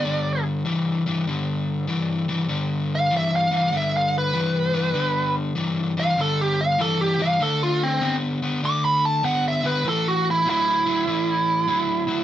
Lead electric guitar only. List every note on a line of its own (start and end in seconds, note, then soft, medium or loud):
0.00 0.43 D5 loud
2.95 3.13 F5 medium
3.17 3.34 E5 medium
3.36 3.54 F5 medium
3.57 3.74 F5 medium
3.77 3.95 E5 medium
3.97 4.15 F5 medium
4.18 5.35 B4 loud
6.00 6.18 F5 loud
6.21 6.39 A4 loud
6.41 6.60 G4 medium
6.61 6.80 F5 loud
6.81 7.00 A4 loud
7.01 7.20 G4 medium
7.22 7.41 F5 medium
7.43 7.61 A4 loud
7.63 7.82 F4 medium
7.83 8.15 C4 medium
8.65 8.84 D6 loud
8.85 9.04 B5 loud
9.05 9.24 A5 loud
9.25 9.44 F#5 medium
9.48 9.66 E5 loud
9.66 9.85 B4 medium
9.89 10.07 A4 medium
10.08 10.27 F#4 medium
10.31 10.48 E4 medium
10.50 12.24 E4 medium